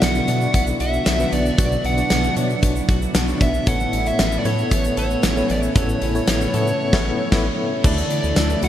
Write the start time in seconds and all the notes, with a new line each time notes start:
Already playing: B2 D3 F#3 B3 D4 E4 F#4 A4 D5
0.02 B1 B3 F#5, snare, closed hi-hat, shaker
0.15 shaker
0.27 B2 B3 D4 F#4 D5, closed hi-hat, shaker
0.41 shaker
0.54 B1 B3 F#5, kick, closed hi-hat, shaker
0.67 shaker
0.80 B1 F#4 E5, closed hi-hat, shaker
0.93 shaker
1.06 B1 D4, snare, closed hi-hat, shaker
1.19 B3 D4 F#4 B4, shaker
1.32 B1 B3 D5, closed hi-hat, shaker
1.46 shaker
1.58 B1 B2 F#3 B3 D4 F#4 D5, kick, closed hi-hat, shaker
1.72 shaker
1.84 B1 D4 F#5, closed hi-hat
1.97 B3 D4 F#4 D5, closed hi-hat, shaker
2.10 B1 B3, snare, closed hi-hat, shaker
2.24 shaker
2.36 B2 B3 D4 F#4 C#5, closed hi-hat, shaker
2.44 D5
2.50 shaker
2.63 B1 B3, kick, closed hi-hat, shaker
2.76 shaker
2.89 B1 F#4, kick, closed hi-hat, shaker
3.02 shaker
3.15 B1 D4, snare, closed hi-hat, shaker
3.27 B3 D4 F#4 D5, shaker
3.41 B1 B3 E5, kick, closed hi-hat, shaker
3.54 shaker
3.66 A1 A2 C#3 E3 A3 B3 E4 A4 C#5 F#5, kick, closed hi-hat, shaker
3.80 shaker
3.93 A1 C#4, closed hi-hat
4.06 B3 E4 A4 C#5 E5, closed hi-hat, shaker
4.19 A1 B3, snare, closed hi-hat, shaker
4.32 shaker
4.39 D5
4.44 A2 B3 E4 A4 C#5, closed hi-hat, shaker
4.58 shaker
4.71 A1 B3, kick, closed hi-hat, shaker
4.84 shaker
4.97 A1 A4 C#5, closed hi-hat, shaker
5.11 shaker
5.23 A1 C#4, snare, closed hi-hat, shaker
5.36 B3 E4 A4 C#5, shaker
5.49 A1 B3 D5, closed hi-hat, shaker
5.63 shaker
5.75 A1 A2 E3 B3 C#4 E4 A4 C#5, kick, closed hi-hat, shaker
5.89 shaker
6.02 A1 C#4, closed hi-hat
6.14 B3 E4 A4 C#5, closed hi-hat, shaker
6.27 A1 B3, snare, closed hi-hat, shaker
6.41 shaker
6.53 A2 B3 E4 A4 C#5, closed hi-hat, shaker
6.67 shaker
6.93 A1 B3 E4 A4 C#5, kick, snare, crash
7.32 A1 B3 E4 A4 C#5, kick, snare, crash
7.83 D2 D3 E3 A3 D4 E4 A4 D5, kick, crash, shaker
7.98 shaker
8.10 D4, closed hi-hat
8.24 D2, shaker
8.36 D2 A4, snare, closed hi-hat, tambourine, shaker
8.50 shaker
8.62 D2 A3 D4 E4 F#4 F#5, closed hi-hat, shaker